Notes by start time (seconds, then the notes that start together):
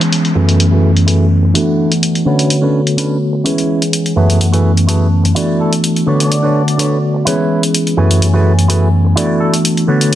Already playing: E3 G#3 B3 C#4 G#4, downlifter
0.01 closed hi-hat
0.12 closed hi-hat
0.25 closed hi-hat
0.35 F#2 E3 A3 B3 C#4 E4 F#4 G#4 A4 B4 G#5
0.49 closed hi-hat
0.60 closed hi-hat
0.71 E4 F#4 G#4 A4 B4
0.97 closed hi-hat
1.06 E4 F#4 G#4 A4 B4, closed hi-hat
1.43 muted clean electric guitar stroke
1.54 E3 A3 B3 D4 E4 F#4 A4, closed hi-hat
1.92 closed hi-hat
2.03 closed hi-hat
2.15 closed hi-hat
2.25 D3 A3 B3 C#4 D4 F#4 A4 B4 C#5
2.39 closed hi-hat
2.50 closed hi-hat
2.62 C#4 D4 A4 B4
2.87 closed hi-hat
2.97 C#4 D4 A4 B4, closed hi-hat
3.33 muted clean electric guitar stroke
3.44 E3 G#3 B3 C#4 E4 G#4 B4, closed hi-hat
3.58 closed hi-hat
3.82 closed hi-hat
3.93 closed hi-hat
4.06 closed hi-hat
4.16 F#2 E3 A3 B3 C#4 E4 F#4 G#4 A4 B4 E5
4.30 closed hi-hat
4.40 F#5, closed hi-hat
4.52 E4 F#4 G#4 A4 B4, closed hi-hat
4.77 closed hi-hat
4.87 E4 F#4 G#4 A4 B4 A5, closed hi-hat
5.24 muted clean electric guitar stroke, closed hi-hat
5.35 E3 A3 B3 D4 E4 F#4 A4 D5, closed hi-hat
5.60 A3 A4
5.73 closed hi-hat
5.84 closed hi-hat
5.96 closed hi-hat
6.06 D3 A3 B3 D4 F#4 A4 B4 C#5 D5
6.20 D4 D5, closed hi-hat
6.32 closed hi-hat
6.43 D4 A4 B4 C#5
6.68 closed hi-hat
6.78 D4 A4 B4 C#5, closed hi-hat
7.14 muted clean electric guitar stroke
7.25 E3 G#3 B3 C#4 E4 G#4 B4 C#5, closed hi-hat
7.63 closed hi-hat
7.75 closed hi-hat
7.87 closed hi-hat
7.97 F#2 E3 A3 B3 C#4 E4 F#4 G#4 A4 B4 G#5
8.11 closed hi-hat
8.22 closed hi-hat
8.34 E4 F#4 G#4 A4 B4
8.59 closed hi-hat
8.68 E4 F#4 G#4 A4 B4, closed hi-hat
9.05 muted clean electric guitar stroke
9.16 E3 A3 B3 D4 E4 F#4 A4 D5, closed hi-hat
9.41 A3 A4
9.54 closed hi-hat
9.65 closed hi-hat
9.77 closed hi-hat
9.87 D3 A3 B3 D4 F#4 A4 B4 C#5
10.01 closed hi-hat